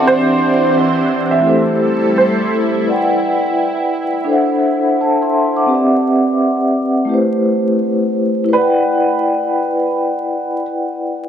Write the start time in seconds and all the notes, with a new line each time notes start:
Already playing: C4 D4 F#5 D6
0.02 C4 G4
0.06 E3 C5
0.10 E5
0.78 E5
1.31 E5
1.40 A3 E4
1.45 G3 E4 G4 A4
1.49 C5
2.18 C5
2.83 E4 B4
2.88 D5 F#5
2.92 G5
4.25 D4 A4
4.29 C5 E5
4.33 F#5
5.01 C5 A5
5.22 E5 C6
5.56 F#5 D6
5.66 C4 G4
5.71 B4 D5
5.75 E5
7.05 A3 E4
7.09 G4 B4
7.14 C5
8.44 E4
8.49 B4
8.53 B4 D5
8.57 F#5
8.61 G5